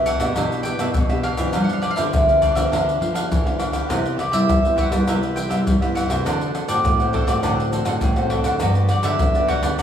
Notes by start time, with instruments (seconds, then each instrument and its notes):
Already playing: nylon-string guitar B2 B3 D4 G4
0.06 cavaquinho D4 G4 B4 E5, mandolin F#5, pandeiro, high agogo, shaker
0.20 nylon-string guitar B2 B3 D4 G4, cavaquinho G4 B4 E5, pandeiro, tamborim, high agogo, shaker
0.36 nylon-string guitar B2 E3 B3 D4 G4, cavaquinho D4 G4 B4 E5, pandeiro, tamborim, low agogo, shaker, surdo
0.52 pandeiro, shaker
0.63 nylon-string guitar B3 D4 G4, cavaquinho D4 G4 B4 E5, mandolin G5, pandeiro, shaker
0.79 nylon-string guitar B2, cavaquinho D4 G4 B4 E5, pandeiro, tamborim, shaker
0.94 nylon-string guitar B2, pandeiro, high agogo, shaker, surdo
1.10 nylon-string guitar B3 D4 G4, cavaquinho G4 B4 E5, pandeiro, tamborim, shaker
1.23 cavaquinho D4 G4 B4 E5, mandolin F5, pandeiro, tamborim, high agogo
1.37 nylon-string guitar E3 F3 B3 D4, cavaquinho G4 B4 E5, pandeiro, tamborim, high agogo, shaker
1.53 nylon-string guitar G2 G3, cavaquinho D4 G4 B4 F5, pandeiro, tamborim, low agogo, shaker, surdo
1.64 mandolin F#5
1.69 mandolin F5, pandeiro, shaker
1.82 cavaquinho D4 G4 B4 F5, mandolin D5, pandeiro, tamborim
1.91 mandolin F5
1.96 nylon-string guitar D3 F3 B3 D4, cavaquinho D4 G4 B4 F5, mandolin E5, pandeiro, shaker
2.14 nylon-string guitar D3, pandeiro, tamborim, shaker, surdo
2.28 nylon-string guitar F3 B3 D4, cavaquinho G4 B4 F5, pandeiro, shaker
2.41 cavaquinho D4 G4 B4 F5, mandolin D5, pandeiro, high agogo, shaker, surdo
2.55 nylon-string guitar D3 F3 B3 D4, cavaquinho G4 B4 F5, mandolin E5, pandeiro, tamborim, high agogo, shaker
2.71 nylon-string guitar G2 D3 F3 B3 D4, cavaquinho D4 G4 B4 F5, pandeiro, tamborim, low agogo, shaker, surdo
2.89 pandeiro, shaker
3.00 nylon-string guitar F3 B3 D4, cavaquinho D4 G4 B4 F5, pandeiro
3.14 cavaquinho D4 G4 B4 F5, pandeiro, tamborim, shaker
3.31 nylon-string guitar D3 E3, pandeiro, high agogo, shaker, surdo
3.45 nylon-string guitar F3 B3 D4, cavaquinho G4 B4 F5, pandeiro, tamborim, shaker
3.58 nylon-string guitar D3, cavaquinho D4 G4 B4 F5, pandeiro, tamborim, high agogo, shaker
3.72 cavaquinho G4 B4 F5, pandeiro, tamborim, high agogo, shaker
3.88 nylon-string guitar C3 G3 B3, cavaquinho G4 B4 C5 E5, pandeiro, tamborim, low agogo, shaker, surdo
3.92 nylon-string guitar E4
4.05 pandeiro, shaker
4.16 cavaquinho G4 B4 C5 E5, mandolin D5, pandeiro, tamborim
4.31 nylon-string guitar G3 B3 E4, cavaquinho G4 B4 C5 E5, mandolin E5, pandeiro, shaker
4.49 nylon-string guitar G2 G3, pandeiro, tamborim, shaker, surdo
4.62 nylon-string guitar G3 B3 E4, cavaquinho B4 C5 E5, pandeiro, shaker
4.76 cavaquinho G4 B4 C5 E5, mandolin F#5, pandeiro, high agogo, surdo
4.91 nylon-string guitar G3 B3 E4, cavaquinho B4 C5 E5, pandeiro, tamborim, high agogo, shaker
5.07 nylon-string guitar C3 G3 B3 E4, cavaquinho G4 B4 C5 E5, pandeiro, tamborim, low agogo, shaker, surdo
5.23 pandeiro, shaker
5.35 cavaquinho G4 B4 C5 E5, mandolin G5, pandeiro, shaker
5.49 nylon-string guitar G3 B3 E4, cavaquinho G4 B4 C5 E5, pandeiro, tamborim, shaker
5.67 nylon-string guitar G2 G3, pandeiro, high agogo, shaker, surdo
5.82 nylon-string guitar G3 B3 E4, cavaquinho B4 C5 E5, pandeiro, tamborim, shaker
5.95 cavaquinho G4 B4 C5 E5, mandolin F#5, pandeiro, tamborim, high agogo, shaker
6.09 nylon-string guitar C3 A3 C4 F#4, cavaquinho B4 C5 E5, pandeiro, tamborim, high agogo, shaker
6.25 nylon-string guitar D3, cavaquinho D4 A4 C5 F#5, pandeiro, tamborim, low agogo, shaker, surdo
6.41 pandeiro, shaker
6.54 cavaquinho D4 A4 C5 F#5, pandeiro, tamborim, shaker
6.68 nylon-string guitar A2 A3 C4 F#4, cavaquinho D4 A4 C5 F#5, mandolin D5, pandeiro, shaker
6.84 nylon-string guitar A2, pandeiro, tamborim, shaker, surdo
6.99 nylon-string guitar A3 C4 F#4, cavaquinho A4 C5 F#5, pandeiro, shaker
7.13 cavaquinho D4 A4 C5 F#5, mandolin C5, pandeiro, high agogo, surdo
7.26 nylon-string guitar A2 A3 C4 F#4, cavaquinho A4 C5 F#5, mandolin D5, pandeiro, tamborim, high agogo, shaker
7.42 nylon-string guitar A2 D3 C4 F#4, cavaquinho D4 A4 C5 F#5, pandeiro, tamborim, low agogo, shaker, surdo
7.60 pandeiro, shaker
7.70 nylon-string guitar A3 C4 F#4, cavaquinho D4 A4 C5 F#5, pandeiro, shaker
7.85 nylon-string guitar A2, cavaquinho D4 A4 C5 F#5, pandeiro, tamborim, shaker
8.01 nylon-string guitar A2, pandeiro, high agogo, shaker, surdo
8.16 nylon-string guitar A3 C4 F#4, cavaquinho A4 C5 F#5, pandeiro, tamborim, shaker
8.30 cavaquinho D4 A4 C5 F#5, pandeiro, tamborim, high agogo
8.44 nylon-string guitar D3, cavaquinho A4 C5 F#5, pandeiro, tamborim, high agogo, shaker
8.60 nylon-string guitar G2 F#3 B3 D4, cavaquinho F#4 G4 B4 D5, pandeiro, tamborim, low agogo, shaker, surdo
8.75 pandeiro, shaker
8.89 cavaquinho F#4 G4 B4 D5, mandolin D5, pandeiro, tamborim, shaker
9.03 nylon-string guitar D3 F#3 B3 D4, cavaquinho F#4 G4 B4 D5, mandolin E5, pandeiro, shaker
9.19 nylon-string guitar D3, pandeiro, tamborim, shaker, surdo
9.35 nylon-string guitar F#3 B3 D4, cavaquinho G4 B4 D5, pandeiro, shaker
9.48 cavaquinho F#4 G4 B4 D5, mandolin F#5, pandeiro, high agogo, surdo
9.63 nylon-string guitar D3 F#3 B3 D4, cavaquinho G4 B4 D5, pandeiro, tamborim, high agogo, shaker
9.78 nylon-string guitar G2, cavaquinho F#4 G4, pandeiro, tamborim, low agogo, shaker, surdo